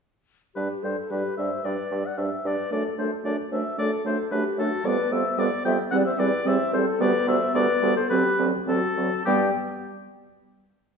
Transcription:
0.55 G2 G3 D4 G4 B4
0.83 G2 G3 D4 A4 C5
1.10 G2 G3 D4 G4 B4
1.37 G2 G3 D4 C5 E5
1.64 G2 G3 D4 B4 D5
1.91 G2 G3 D4
2.05 D5 F#5
2.18 G2 G3 D4 C5 E5
2.44 G2 G3 D4 B4 D5
2.71 F#2 A3 D4 A4 D5
2.98 F#2 A3 D4 A4 C5
3.24 F#2 A3 D4 A4 D5
3.51 F#2 A3 D4 C5 E5
3.78 F#2 A3 D4 A4 D5
4.05 F#2 A3 D4 A4 C5
4.31 F#2 A3 D4 G4 B4
4.58 F#2 A3 D4 F#4 A4
4.84 F2 G3 B3 B4 D5
5.11 F2 G3 B3 C5 E5
5.37 F2 G3 B3 B4 D5
5.65 F2 G3 B3 E5 G5
5.91 E2 G3 C4 D5 F#5
6.05 C5 E5
6.18 E2 G3 C4 B4 D5
6.45 E2 G3 C4 C5 E5
6.72 E2 G3 C4 A4 C5
7.00 D2 G3 B3 B4 D5
7.27 D2 G3 B3 C5 E5
7.54 D2 G3 B3 B4 D5
7.82 D2 G3 B3
7.95 A4 C5
8.10 D2 F#3 C4 G4 B4
8.39 D2 F#3 C4
8.66 D2 F#3 C4 F#4 A4
8.97 D2 F#3 C4
9.25 G2 G3 B3 G4 G5

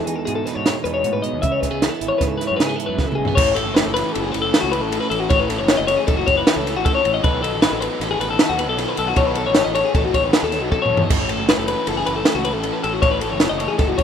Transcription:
Already playing: E2 E3 G#3 F#4
0.06 E3 D#4 G#4, closed hi-hat
0.16 A4
0.25 G#2 B2 G#4, closed hi-hat
0.35 A4
0.46 D#4 B4, snare, closed hi-hat
0.55 G#2 C#5
0.66 G#3, snare, closed hi-hat
0.84 E2 D#4 B4, closed hi-hat
0.94 C#5
1.03 G#2 A2, closed hi-hat
1.13 B4
1.22 B2 D#5, closed hi-hat
1.33 D#2
1.42 C#2 C#3 E5, kick, closed hi-hat
1.52 C#5
1.61 G#3 B4, kick, snare, closed hi-hat
1.71 C#2 B3 G#4
1.81 E3, snare, closed hi-hat
1.89 A4
2.01 G#1 E4, closed hi-hat
2.08 C#5
2.18 G#2 C#3 B4, kick, snare, closed hi-hat
2.28 A4
2.38 E4 B4, snare, closed hi-hat
2.47 F#2 C#5
2.56 C#3 G#3 B4, snare, closed hi-hat
2.67 B3 G#4
2.76 E4 A4, closed hi-hat
2.86 F#2 B4
2.97 C#3, kick, snare
3.06 A4
3.12 G#4, mid tom
3.17 B1 G#3
3.25 B3, floor tom
3.35 A1 A2 E3 A3 C#4 E4 C#5, kick, crash
3.54 A3 C#4 E4 A4, ride
3.66 F#1
3.74 E3 A3 C#4 E4 B4, snare, ride
3.84 F#1 A4
3.94 A3 C#4 E4 B4, snare, ride
4.12 F#1 A2 E3 A3 A4, ride
4.16 C#4 E4
4.22 G#4
4.32 F#1 B4, ride
4.42 A4
4.53 E3 A3 C#4 E4, snare, ride
4.61 C#2 F#4
4.71 A3 C#4 E4 B4, ride
4.82 A1 A4
4.91 A2 E3 A3 C#4 E4, ride
5.01 B4
5.09 A1 A3 C#4 E4 A4, ride
5.20 F#4
5.29 A1 A2 E3 A3 C#4 E4 C#5, kick, ride
5.40 B4
5.48 A3 C#4 E4 A4, snare, ride
5.59 F#1 C#5
5.68 E3 A3 C#4 E4, snare, ride
5.77 F#1 D#5
5.87 A3 C#4 E4 C#5, ride
5.97 G#4
6.06 F#1 A2 E3 A3 C#4 E4 A4, kick, ride
6.17 F#4
6.26 F#1 C#5, kick, ride
6.37 B4
6.45 E3 A3 C#4 E4, snare, ride
6.56 C#2 A4
6.65 A3 C#4 E4, snare, ride
6.76 A1 F#4
6.83 A2 E3 A3 C#4 E4 A4, kick, ride
6.95 C#5
7.02 A1 A3 C#4 E4, ride
7.14 D#5
7.22 B1 B2 D#3 F#3 B3 D#4 A4 B4, kick, ride
7.41 F#3 B3 D#4 A4, ride
7.53 A1
7.60 F#3 B3 D#4 A4 B4, snare, ride
7.71 A1 A4
7.80 F#3 B3 D#4 A4 B4, ride
8.00 A1 B2 D#3 F#3 B3 D#4 A4, snare, ride
8.11 G#4
8.20 A1 B4, ride
8.30 A4
8.38 F#3 B3 D#4 A4, snare, ride
8.49 D#2 F#4
8.58 F#3 B3 D#4 A4 B4, ride
8.69 B1 A4
8.77 B2 D#3 F#3 B3 D#4 A4, snare, ride
8.88 B4
8.95 B1 F#3 B3 D#4 A4, ride
9.08 F#4
9.16 B1 B2 D#3 F#3 B3 D#4 A4 C#5, kick, ride
9.27 B4
9.35 F#3 B3 D#4 A4, ride
9.46 A1 C#5
9.55 F#3 B3 D#4 A4, snare, ride
9.64 A1 D#5
9.74 F#3 B3 D#4 A4 C#5, ride
9.85 G#4
9.93 A1 B2 D#3 F#3 B3 D#4 A4, kick, ride
10.05 F#4
10.14 A1 C#5, kick, ride
10.24 B4
10.32 F#3 B3 D#4 A4, snare, ride
10.43 D#2 A4
10.52 F#3 B3 D#4 A4, snare, ride
10.62 B1 F#4
10.70 B2 D#3 F#3 B3 D#4 A4, kick
10.82 C#5, mid tom
10.90 E2 F#3 B3 D#4 A4
10.97 floor tom
11.02 D#5
11.08 A1 A2 E3 A3 C#4 E4 A4 C#5, kick, crash, ride
11.29 A3 C#4 E4 A4, ride
11.39 F#1
11.48 A3 C#4 E4 A4 B4, snare, ride
11.58 F#1 A4
11.68 A3 C#4 E4 A4 B4, ride
11.87 F#1 A2 E3 A3 C#4 E4 A4, ride
11.97 G#4
12.06 F#1 B4, ride
12.16 A4
12.25 A3 C#4 E4 A4, snare, ride
12.35 C#2 F#4
12.45 A3 C#4 E4 A4 B4, ride
12.53 A1 A4
12.63 A2 E3 A3 C#4 E4 A4, ride
12.73 B4
12.83 A1 A3 C#4 E4 A4, ride
12.93 F#4
13.02 A1 A2 E3 A3 C#4 E4 A4 C#5, kick, ride
13.11 B4
13.20 A3 C#4 E4 A4, ride
13.30 F#1 C#5
13.40 A3 C#4 E4 A4, snare, ride
13.49 F#1 D#5
13.58 A3 C#4 E4 A4 C#5, ride
13.68 G#4
13.77 F#1 A2 E3 A3 C#4 E4 A4, kick, snare, ride
13.88 F#4
13.98 F#1 C#5, kick, ride

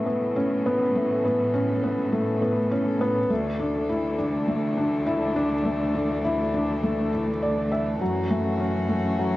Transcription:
Already playing: A2 E3 A3 B3 C#4 A4
0.06 B3
0.36 C#4
0.66 B3
0.95 A3
1.25 B3
1.54 C#4
1.84 B3
2.13 A3
2.42 B3
2.72 C#4
3.01 B3
3.29 D2 E3 A3 D4
3.59 D4
3.89 E4
4.18 D4
4.48 A3
4.77 D4
5.06 E4
5.36 D4
5.65 A3
5.95 D4
6.24 E4
6.54 D4
6.83 A3
7.13 E4
7.42 D5
7.72 E5
8.00 F#2 F#3 C#4 F#4
8.30 A3
8.60 C#4
8.89 A3
9.19 F#3

